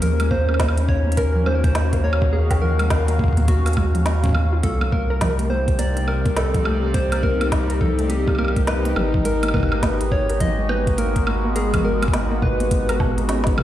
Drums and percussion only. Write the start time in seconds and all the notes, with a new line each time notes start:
0.02 closed hi-hat
0.20 closed hi-hat, high woodblock
0.31 kick
0.49 high woodblock
0.54 high woodblock
0.60 kick, snare, closed hi-hat, high woodblock
0.69 high woodblock
0.77 closed hi-hat
0.89 kick
1.12 closed hi-hat
1.17 kick, closed hi-hat
1.46 high woodblock
1.64 kick, closed hi-hat
1.75 snare, closed hi-hat
1.93 kick, closed hi-hat
2.13 high woodblock
2.22 kick
2.51 kick, closed hi-hat, high woodblock
2.79 closed hi-hat, high woodblock
2.90 kick, snare, closed hi-hat
3.08 closed hi-hat
3.19 kick
3.24 kick
3.28 kick
3.33 kick
3.37 kick, closed hi-hat
3.40 kick
3.43 kick
3.45 kick, closed hi-hat
3.48 kick
3.66 closed hi-hat, high woodblock
3.73 kick, closed hi-hat, high woodblock
3.95 closed hi-hat
4.06 snare, closed hi-hat
4.24 kick, closed hi-hat
4.26 kick
4.29 kick
4.31 kick
4.33 kick, high woodblock
4.63 kick, closed hi-hat
4.81 high woodblock
4.92 kick
5.21 kick, snare, closed hi-hat
5.39 closed hi-hat
5.68 kick, closed hi-hat
5.79 closed hi-hat
5.97 closed hi-hat
6.08 high woodblock
6.26 kick, closed hi-hat
6.37 snare, closed hi-hat
6.54 kick, closed hi-hat
6.65 high woodblock
6.94 kick, closed hi-hat
7.12 closed hi-hat, high woodblock
7.23 kick
7.41 closed hi-hat, high woodblock
7.52 kick, snare, closed hi-hat
7.70 closed hi-hat
7.81 kick
7.99 closed hi-hat
8.10 closed hi-hat
8.28 kick, high woodblock
8.35 high woodblock
8.39 high woodblock
8.45 high woodblock
8.48 high woodblock
8.56 kick, closed hi-hat
8.67 snare, closed hi-hat
8.85 closed hi-hat
8.96 mid tom, high woodblock
9.14 kick
9.25 closed hi-hat
9.43 closed hi-hat, high woodblock
9.48 high woodblock
9.54 kick, high woodblock
9.57 kick
9.60 kick
9.63 kick, high woodblock
9.69 kick, high woodblock
9.83 kick, snare, closed hi-hat
10.01 closed hi-hat
10.12 kick
10.29 closed hi-hat
10.40 kick, closed hi-hat
10.69 high woodblock
10.87 kick, closed hi-hat
10.98 closed hi-hat
11.16 kick, closed hi-hat
11.27 high woodblock
11.56 closed hi-hat
11.74 kick, closed hi-hat, high woodblock
12.03 closed hi-hat, high woodblock
12.08 kick
12.13 snare, closed hi-hat
12.42 kick, mid tom
12.60 closed hi-hat
12.71 kick, closed hi-hat
12.89 closed hi-hat, high woodblock
13.00 kick, high woodblock
13.18 closed hi-hat
13.29 snare, closed hi-hat
13.44 kick, snare, closed hi-hat
13.58 mid tom, high woodblock